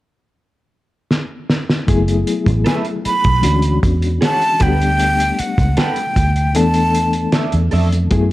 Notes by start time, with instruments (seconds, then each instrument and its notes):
1.11 snare
1.50 snare
1.70 snare
1.87 fingered electric bass F#1, reed electric piano F#3 A3 B3 E4 G#4, kick, closed hi-hat
2.08 closed hi-hat
2.27 closed hi-hat
2.46 fingered electric bass A1, kick, closed hi-hat
2.64 clean electric guitar A4 B4 E5, flute G#5, snare, closed hi-hat
2.85 closed hi-hat
3.05 flute B5, muted fingered electric bass stroke, closed hi-hat
3.24 fingered electric bass B1, kick, closed hi-hat
3.42 fingered electric bass D2, reed electric piano E3 G#3 C#4 D4 F#4, closed hi-hat
3.62 closed hi-hat
3.83 fingered electric bass E2, kick, closed hi-hat
4.02 closed hi-hat
4.21 clean electric guitar G#4 C#5 F#5, flute A5, snare, closed hi-hat
4.42 closed hi-hat
4.59 fingered electric bass D2, reed electric piano G3 A3 B3 D4 F#4, clean electric guitar A4 B4 F#5, flute G5, kick, closed hi-hat
4.68 reed electric piano G4
4.82 closed hi-hat
4.99 closed hi-hat
5.20 closed hi-hat
5.39 flute F#5, muted fingered electric bass stroke, closed hi-hat
5.58 fingered electric bass C#2, kick, closed hi-hat
5.77 clean electric guitar A4 B4 F#5, flute G5, snare, closed hi-hat
5.96 closed hi-hat
6.16 fingered electric bass D2, kick, closed hi-hat
6.36 closed hi-hat
6.54 fingered electric bass E2, reed electric piano E3 A3 B3 D4 A4, flute A5, closed hi-hat
6.74 closed hi-hat
6.94 closed hi-hat
7.13 closed hi-hat
7.32 clean electric guitar A4 D5 E5, snare, closed hi-hat
7.52 fingered electric bass E2, closed hi-hat
7.71 fingered electric bass F2, clean electric guitar A4 D5 E5, open hi-hat
7.92 closed hi-hat
8.10 fingered electric bass F#2, reed electric piano F#3 A3 B3 E4 G#4, kick, closed hi-hat